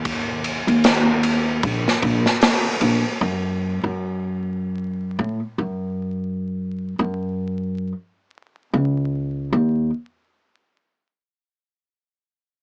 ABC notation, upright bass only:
X:1
M:4/4
L:1/16
Q:"Swing 16ths" 1/4=76
K:Gb
V:1 name="Upright bass" clef=bass
E,,3 E,,4- E,, B,,, z B,,, z3 B,,, z | G,,3 G,,6- G,, =A,, z G,,4- | G,,3 G,,4- G,, z4 D,,4 | E,,2 z12 z2 |]